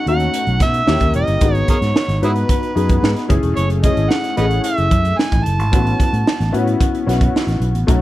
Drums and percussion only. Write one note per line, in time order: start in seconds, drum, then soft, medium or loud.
0.07 closed hi-hat medium
0.20 closed hi-hat soft
0.34 closed hi-hat medium
0.47 closed hi-hat soft
0.60 kick medium
0.60 snare soft
0.60 closed hi-hat medium
0.74 closed hi-hat soft
0.88 snare medium
1.00 kick medium
1.00 closed hi-hat soft
1.14 closed hi-hat medium
1.27 closed hi-hat soft
1.41 kick loud
1.41 closed hi-hat medium
1.55 closed hi-hat soft
1.68 kick medium
1.68 closed hi-hat medium
1.82 snare soft
1.82 closed hi-hat soft
1.96 snare medium
2.09 snare soft
2.09 closed hi-hat medium
2.23 closed hi-hat medium
2.36 closed hi-hat soft
2.49 kick medium
2.49 closed hi-hat medium
2.63 closed hi-hat soft
2.77 closed hi-hat medium
2.89 kick medium
2.89 closed hi-hat soft
3.04 snare medium
3.16 snare soft
3.16 closed hi-hat soft
3.30 kick medium
3.30 closed hi-hat medium
3.43 closed hi-hat soft
3.57 closed hi-hat medium
3.70 closed hi-hat soft
3.83 kick medium
3.83 closed hi-hat medium
3.97 closed hi-hat soft
4.11 snare medium
4.24 snare soft
4.24 closed hi-hat medium
4.37 closed hi-hat medium
4.51 closed hi-hat soft
4.64 closed hi-hat medium
4.78 closed hi-hat soft
4.91 kick medium
4.91 closed hi-hat medium
5.05 closed hi-hat soft
5.19 snare medium
5.32 kick medium
5.32 closed hi-hat soft
5.46 closed hi-hat medium
5.60 closed hi-hat soft
5.73 kick loud
5.73 closed hi-hat medium
5.87 closed hi-hat soft
6.00 kick medium
6.00 closed hi-hat medium
6.14 closed hi-hat soft
6.27 snare loud
6.41 snare soft
6.41 closed hi-hat soft
6.54 closed hi-hat medium
6.67 closed hi-hat soft
6.81 kick medium
6.81 closed hi-hat medium
6.95 closed hi-hat soft
7.09 snare soft
7.09 closed hi-hat medium
7.21 kick medium
7.21 closed hi-hat soft
7.36 snare medium
7.48 snare soft
7.48 closed hi-hat soft
7.62 closed hi-hat medium
7.75 closed hi-hat soft
7.88 kick loud
7.88 closed hi-hat medium